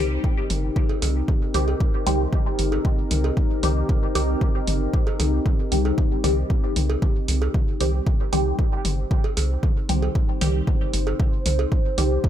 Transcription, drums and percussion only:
0.24 kick loud
0.24 high tom soft
0.50 open hi-hat medium
0.50 high tom medium
0.76 kick loud
0.76 high tom medium
0.89 cowbell medium
1.02 open hi-hat medium
1.02 high tom soft
1.02 cowbell medium
1.28 kick loud
1.28 high tom medium
1.54 open hi-hat medium
1.54 high tom medium
1.68 cowbell medium
1.80 kick loud
1.80 high tom soft
2.07 open hi-hat medium
2.07 high tom medium
2.33 kick loud
2.33 high tom medium
2.59 open hi-hat medium
2.59 high tom soft
2.72 cowbell medium
2.85 kick loud
2.85 high tom medium
3.11 open hi-hat medium
3.11 high tom medium
3.24 cowbell medium
3.37 kick loud
3.37 high tom soft
3.63 open hi-hat medium
3.63 high tom medium
3.89 kick loud
3.89 high tom medium
4.15 open hi-hat medium
4.15 high tom soft
4.41 kick loud
4.41 high tom medium
4.67 open hi-hat medium
4.67 high tom medium
4.93 kick loud
4.93 high tom soft
5.07 cowbell medium
5.20 open hi-hat medium
5.20 high tom medium
5.20 cowbell medium
5.46 kick loud
5.46 high tom medium
5.72 open hi-hat medium
5.72 high tom soft
5.85 cowbell medium
5.98 kick loud
5.98 high tom medium
6.24 open hi-hat medium
6.24 high tom medium
6.50 kick loud
6.50 high tom soft
6.76 open hi-hat medium
6.76 high tom medium
6.90 cowbell medium
7.02 kick loud
7.02 high tom medium
7.28 open hi-hat medium
7.28 high tom soft
7.42 cowbell medium
7.54 kick loud
7.54 high tom medium
7.81 open hi-hat medium
7.81 high tom soft
8.07 kick loud
8.07 high tom medium
8.33 open hi-hat medium
8.33 high tom medium
8.59 kick loud
8.59 high tom soft
8.85 open hi-hat medium
8.85 high tom medium
9.11 kick loud
9.11 high tom medium
9.24 cowbell medium
9.37 open hi-hat medium
9.37 high tom soft
9.37 cowbell medium
9.63 kick loud
9.63 high tom medium
9.89 open hi-hat medium
9.89 high tom medium
10.02 cowbell medium
10.15 kick loud
10.15 high tom soft
10.41 open hi-hat medium
10.41 high tom medium
10.67 kick loud
10.67 high tom medium
10.94 open hi-hat medium
10.94 high tom soft
11.07 cowbell medium
11.20 kick loud
11.20 high tom medium
11.46 open hi-hat medium
11.46 high tom medium
11.59 cowbell medium
11.72 kick loud
11.72 high tom soft
11.98 open hi-hat medium
11.98 high tom medium
12.24 kick loud
12.24 high tom medium

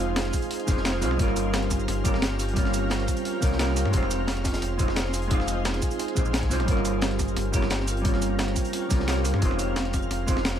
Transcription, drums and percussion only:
0.16 snare loud
0.16 closed hi-hat medium
0.25 snare soft
0.25 closed hi-hat soft
0.33 kick medium
0.33 closed hi-hat medium
0.33 cabasa medium
0.42 closed hi-hat soft
0.42 cabasa soft
0.51 closed hi-hat medium
0.60 closed hi-hat soft
0.67 kick loud
0.67 snare medium
0.67 closed hi-hat medium
0.67 cabasa medium
0.77 snare medium
0.85 snare loud
0.85 closed hi-hat medium
0.94 snare soft
1.02 snare soft
1.02 closed hi-hat medium
1.02 open hi-hat medium
1.02 cabasa medium
1.11 snare soft
1.19 kick loud
1.19 closed hi-hat medium
1.28 snare soft
1.36 closed hi-hat medium
1.36 cabasa medium
1.53 snare loud
1.53 closed hi-hat medium
1.62 snare soft
1.62 closed hi-hat soft
1.70 kick medium
1.70 snare soft
1.70 closed hi-hat medium
1.70 cabasa medium
1.80 cabasa soft
1.88 snare soft
1.88 closed hi-hat medium
2.04 kick loud
2.04 closed hi-hat medium
2.04 cabasa medium
2.14 snare medium
2.14 snare soft
2.22 snare loud
2.22 closed hi-hat medium
2.30 snare medium
2.39 closed hi-hat medium
2.39 open hi-hat medium
2.39 cabasa medium
2.48 closed hi-hat soft
2.56 kick loud
2.56 closed hi-hat medium
2.65 snare soft
2.73 closed hi-hat medium
2.73 cabasa medium
2.90 snare loud
2.90 closed hi-hat medium
3.00 snare soft
3.00 closed hi-hat soft
3.08 kick medium
3.08 closed hi-hat medium
3.08 cabasa medium
3.17 closed hi-hat soft
3.17 cabasa soft
3.25 closed hi-hat medium
3.42 kick loud
3.42 snare medium
3.42 closed hi-hat medium
3.42 cabasa medium
3.52 snare soft
3.59 snare loud
3.59 closed hi-hat medium
3.68 snare soft
3.77 snare soft
3.77 closed hi-hat medium
3.77 open hi-hat medium
3.77 cabasa medium
3.85 snare soft
3.93 kick loud
3.93 closed hi-hat loud
4.03 snare soft
4.11 closed hi-hat medium
4.11 cabasa medium
4.27 snare loud
4.27 closed hi-hat medium
4.36 snare soft
4.36 closed hi-hat soft
4.44 kick medium
4.44 snare loud
4.44 snare soft
4.44 closed hi-hat medium
4.44 cabasa medium
4.53 snare loud
4.53 closed hi-hat medium
4.53 cabasa soft
4.62 snare soft
4.62 closed hi-hat medium
4.79 kick loud
4.79 closed hi-hat medium
4.79 cabasa medium
4.88 snare medium
4.88 snare soft
4.96 snare loud
4.96 closed hi-hat medium
5.05 snare medium
5.14 closed hi-hat medium
5.14 open hi-hat medium
5.14 cabasa medium
5.22 closed hi-hat soft
5.30 kick loud
5.30 closed hi-hat medium
5.30 closed hi-hat loud
5.40 snare soft
5.48 closed hi-hat medium
5.48 cabasa medium
5.65 snare loud
5.65 closed hi-hat medium
5.65 closed hi-hat loud
5.74 snare medium
5.74 closed hi-hat soft
5.81 kick medium
5.81 closed hi-hat medium
5.81 cabasa medium
5.91 closed hi-hat soft
5.91 cabasa soft
5.99 closed hi-hat medium
6.08 closed hi-hat soft
6.17 kick loud
6.17 closed hi-hat medium
6.17 cabasa medium
6.26 cabasa soft
6.33 snare loud
6.33 closed hi-hat medium
6.43 kick medium
6.43 snare soft
6.43 closed hi-hat soft
6.51 snare soft
6.51 closed hi-hat medium
6.51 open hi-hat medium
6.51 cabasa medium
6.60 snare soft
6.60 closed hi-hat soft
6.68 kick loud
6.68 closed hi-hat medium
6.68 closed hi-hat loud
6.77 snare soft
6.85 closed hi-hat medium
6.85 cabasa medium
7.01 snare loud
7.01 closed hi-hat medium
7.01 closed hi-hat loud
7.11 snare soft
7.11 closed hi-hat soft
7.19 kick medium
7.19 snare soft
7.19 closed hi-hat medium
7.19 cabasa medium
7.28 cabasa soft
7.37 snare soft
7.37 closed hi-hat loud
7.37 closed hi-hat medium
7.54 kick loud
7.54 closed hi-hat medium
7.54 cabasa medium
7.62 snare medium
7.62 snare soft
7.70 snare loud
7.70 closed hi-hat medium
7.80 snare soft
7.87 closed hi-hat medium
7.87 open hi-hat medium
7.87 cabasa medium
7.97 closed hi-hat soft
8.05 kick loud
8.05 closed hi-hat medium
8.13 snare soft
8.22 closed hi-hat medium
8.22 cabasa medium
8.39 snare loud
8.39 closed hi-hat medium
8.47 snare medium
8.47 closed hi-hat soft
8.56 kick medium
8.56 closed hi-hat medium
8.56 cabasa medium
8.65 closed hi-hat soft
8.65 cabasa soft
8.73 closed hi-hat medium
8.73 closed hi-hat loud
8.90 kick loud
8.90 snare medium
8.90 closed hi-hat medium
8.90 cabasa medium
9.00 snare medium
9.08 snare loud
9.08 closed hi-hat loud
9.08 closed hi-hat medium
9.17 snare soft
9.25 snare soft
9.25 closed hi-hat medium
9.25 open hi-hat medium
9.25 cabasa medium
9.34 snare soft
9.42 kick loud
9.42 closed hi-hat medium
9.51 snare soft
9.59 closed hi-hat medium
9.59 cabasa medium
9.76 snare loud
9.76 closed hi-hat medium
9.85 snare soft
9.85 closed hi-hat soft
9.93 kick medium
9.93 snare soft
9.93 closed hi-hat medium
9.93 cabasa medium
10.03 cabasa soft
10.11 snare soft
10.11 closed hi-hat medium
10.28 kick loud
10.28 closed hi-hat medium
10.28 cabasa medium
10.37 snare medium
10.37 snare soft
10.45 snare loud
10.45 closed hi-hat medium
10.54 snare medium

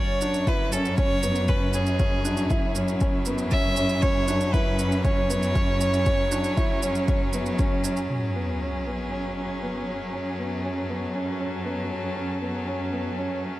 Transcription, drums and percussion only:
0.21 shaker medium
0.34 shaker soft
0.47 kick medium
0.47 shaker soft
0.72 shaker medium
0.85 shaker soft
0.98 kick loud
0.98 shaker soft
1.23 shaker medium
1.35 shaker soft
1.48 kick loud
1.48 shaker soft
1.73 shaker medium
1.86 shaker soft
1.99 kick loud
1.99 shaker soft
2.25 shaker medium
2.37 shaker soft
2.50 kick medium
2.50 shaker soft
2.75 shaker medium
2.88 shaker soft
3.00 kick medium
3.00 shaker soft
3.25 shaker medium
3.38 shaker soft
3.51 kick medium
3.51 shaker soft
3.76 shaker medium
3.89 shaker soft
4.02 kick medium
4.02 shaker soft
4.28 shaker medium
4.41 shaker soft
4.54 kick medium
4.54 shaker soft
4.79 shaker medium
4.92 shaker soft
5.05 kick loud
5.05 shaker soft
5.30 shaker medium
5.43 shaker soft
5.55 kick loud
5.55 shaker soft
5.81 shaker medium
5.94 shaker soft
6.06 kick medium
6.06 shaker soft
6.32 shaker medium
6.44 shaker soft
6.57 kick medium
6.57 shaker soft
6.83 shaker medium
6.95 shaker soft
7.08 kick loud
7.08 shaker soft
7.33 shaker medium
7.46 shaker soft
7.59 kick medium
7.59 shaker soft
7.84 shaker medium
7.97 shaker soft

